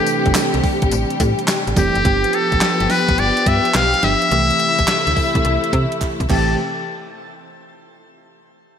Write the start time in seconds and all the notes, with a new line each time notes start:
Already playing: C3 E3 G3 A3 C4 D4 G4 A4
0.07 closed hi-hat, tambourine
0.26 G1, kick, closed hi-hat
0.34 snare, clap, closed hi-hat, tambourine
0.54 C2, closed hi-hat
0.64 kick, open hi-hat
0.82 A1, kick, closed hi-hat
0.91 A1, closed hi-hat, tambourine
1.10 closed hi-hat
1.20 A2, kick, closed hi-hat, tambourine
1.39 closed hi-hat
1.48 snare, clap, closed hi-hat, tambourine
1.67 A1, closed hi-hat
1.76 F1 E3 A3 C4 G4, kick, snare, closed hi-hat, tambourine
1.95 F#1, closed hi-hat
2.04 G1 F3 B3 D4 G4, kick, closed hi-hat
2.24 closed hi-hat
2.33 A4, closed hi-hat
2.52 A1, kick, closed hi-hat
2.61 snare, clap, closed hi-hat
2.80 G1, closed hi-hat
2.90 B4, snare, open hi-hat
3.08 A1, kick, closed hi-hat
3.18 G1 D5, closed hi-hat
3.37 closed hi-hat
3.46 G2 E5, kick, closed hi-hat
3.65 closed hi-hat
3.74 B1 F5, snare, clap, closed hi-hat
3.94 closed hi-hat
4.03 G1 F3 B3 D4 G4 E5, snare, closed hi-hat
4.22 closed hi-hat
4.31 C2 C3 E3 A3 C4 E4 G4, closed hi-hat
4.51 closed hi-hat
4.60 closed hi-hat
4.79 A1, kick, closed hi-hat
4.87 snare, clap, closed hi-hat
5.07 D2, closed hi-hat
5.17 kick, open hi-hat
5.35 C2, kick, closed hi-hat
5.45 C2, closed hi-hat
5.64 closed hi-hat
5.73 C3, kick, closed hi-hat
5.92 closed hi-hat
6.01 kick, clap, closed hi-hat
6.20 C2, kick, closed hi-hat
6.30 A1 C3 E3 A3 C4 G4 A5, kick, clap, crash